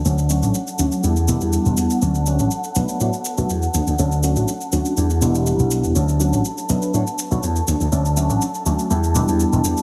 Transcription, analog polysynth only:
\new Staff \with { instrumentName = "Analog polysynth" } { \time 4/4 \key d \major \tempo 4 = 122 <fis a cis' d' a'>16 r16 <fis a cis' d' fis'>16 <fis a cis' d' fis'>16 r8 <fis a cis' d' fis'>8 <g b d' e' g'>16 r16 <g b d' e' g'>4. | <fis a cis' d' fis'>16 r16 <fis a cis' d' fis'>16 <fis a cis' d' fis'>16 r8 <fis a b d' b'>8 <fis a b d' fis'>16 r8 <fis a b d' fis'>16 r4 | <fis a cis' d' a'>16 r16 <fis a cis' d' fis'>16 <fis a cis' d' fis'>16 r8 <fis a cis' d' fis'>8 <g b d' e' g'>16 r16 <g b d' e' g'>4. | <fis a cis' d' fis'>16 r16 <fis a cis' d' fis'>16 <fis a cis' d' fis'>16 r8 <fis a b d' b'>8 <fis a b d' fis'>16 r8 <fis a b d' fis'>16 r4 |
<fis a cis' d' a'>16 r16 <fis a cis' d' fis'>16 <fis a cis' d' fis'>16 r8 <fis a cis' d' fis'>8 <g b d' e' g'>16 r16 <g b d' e' g'>4. | }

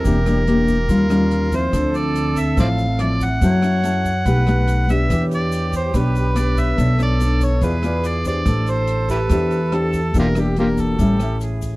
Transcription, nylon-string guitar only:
\new Staff \with { instrumentName = "Nylon-string guitar" } { \time 4/4 \key e \phrygian \tempo 4 = 143 << { <bes d' g'>8 <bes d' g'>8 <bes d' g'>8 r8 <g cis' eis'>8 <g cis' eis'>4 <eis c' e'>8~ | <eis c' e'>4. r8 <f c' e'>8 r8 <f c' e'>8 r8 | <cis' e' a'>8 <cis' e' a'>8 <cis' e' a'>8 r8 <a dis' g'>8 <a dis' g'>4 <b d' g'>8~ | <b d' g'>4. r8 <b d' g'>4 <b d' g'>4 |
<d' a' cis''>8 <d' a' cis''>8 <d' a' cis''>8 r8 <f' gis' d''>8 <f' gis' d''>4 <d' g' c''>8~ | <d' g' c''>4. r8 <d' g' c''>8 r8 <d' g' c''>8 r8 | <bes d' g'>8 <bes d' g'>8 <bes d' g'>4 <g cis' e'>8 <cis' e'>4. | } \\ { e2 dis2 | d2 a,2 | fis2 b,2 | e2 b,2 |
b2 e2 | a2 e2 | e2 a,2 | } >> }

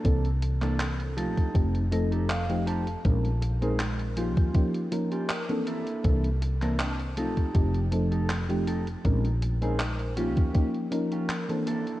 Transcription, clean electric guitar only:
\new Staff \with { instrumentName = "Clean electric guitar" } { \time 4/4 \key ees \mixolydian \tempo 4 = 80 << { r2 r8 ees''8 f''8 a''8 | r1 | r1 | r1 | } \\ { <bes d' e' a'>16 r8 <bes d' e' a'>16 r8 <ees' g' a'>8. r8 <ees' g' a'>16 r8 <ees' g' c''>16 r16 | r8. <c' des' ees' aes'>16 r8 <des' f' g'>8. r8 <des' f' g'>16 r8 <bes d' e' a'>8~ | <bes d' e' a'>16 r8 <bes d' e' bes'>16 r8 <ees' g' a'>8. r8 <ees' g' a'>16 r8 <ees' g' a'>16 r16 | r8. <c' des' ees' aes'>16 r8 <des' f' g'>8. r8 <des' f' g'>16 r8 <bes d' e' a'>8 | } >> }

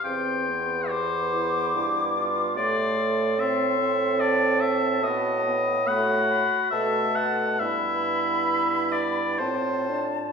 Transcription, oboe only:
\new Staff \with { instrumentName = "Oboe" } { \time 3/4 \key c \major \tempo 4 = 71 g''4 c''4. r8 | \key e \minor d''4 e''4 d''8 e''8 | dis''4 fis''4 e''8 fis''8 | e''4. d''8 c''8 r8 | }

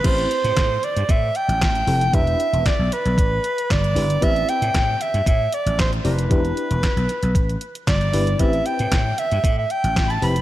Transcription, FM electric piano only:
\new Staff \with { instrumentName = "FM electric piano" } { \time 4/4 \key a \minor \tempo 4 = 115 <c' e' g' c''>4 r2 r8 <c' e' g' a'>16 r16 | <d' e' g' b'>4 r2 r8 <d' e' g' b'>16 r16 | <b c' e' g' b'>4 r2 r8 <c' e' g' d''>16 r16 | <d' e' g' b'>4 r2 r8 <d' e' g' b'>16 r16 |
<c' e' g' b'>4 r2 r8 <c' e' g' b'>16 r16 | }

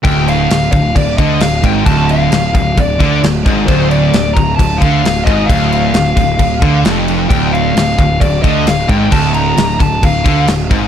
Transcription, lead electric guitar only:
\new Staff \with { instrumentName = "Lead electric guitar" } { \time 4/4 \key c \dorian \tempo 4 = 132 g''8 f''4 f''8 d''8 ees''8 f''8 g''8 | a''8 f''4 f''8 d''4 r4 | c''8 d''4 bes''8 a''8 f''4 ees''8 | f''2. r4 |
g''8 f''4 f''8 d''8 ees''8 f''8 g''8 | a''8 bes''4 a''8 f''4 r4 | }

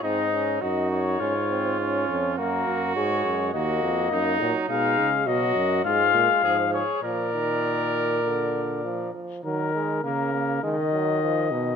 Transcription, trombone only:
\new Staff \with { instrumentName = "Trombone" } { \clef bass \time 4/4 \key gis \dorian \tempo 4 = 102 bis8 cis'8 dis'4 cis'8 bis8 cis'4 | ais4 gis4 ais4. fis8 | \key ees \minor aes4 fis4 aes4 f8 r8 | f8 ees4. d4 f8 f8 |
ges8 aes8 bes8 bes8 aes8 ges8 f8 ees8 | }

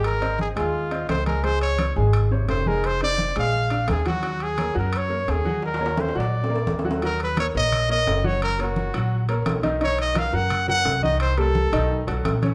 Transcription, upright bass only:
\new Staff \with { instrumentName = "Upright bass" } { \clef bass \time 4/4 \key ees \dorian \tempo 4 = 172 aes,,4. ees,4. des,4~ | des,4. aes,,4. f,,4~ | f,,4. bes,,4. ees,4~ | ees,4. ges,4. ees,4~ |
ees,4. bes,,4. ees,4~ | \key ees \minor ees,4. bes,,4. ges,,4~ | ges,,4. bes,,4. ces,4~ | ces,4. fis,4. c,4~ |
c,4. ces,4 b,,8 bes,,4 | }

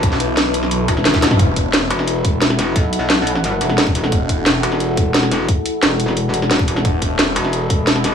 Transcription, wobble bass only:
\new Staff \with { instrumentName = "Wobble bass" } { \clef bass \time 4/4 \key c \lydian \tempo 4 = 176 r2 r8 e,,4 b,,8 | r4. e,,2~ e,,8 | b,,2~ b,,8 e,,4. | r4. e,,2~ e,,8 |
r4 e,,2~ e,,8 e,,8 | r4. e,,2~ e,,8 | }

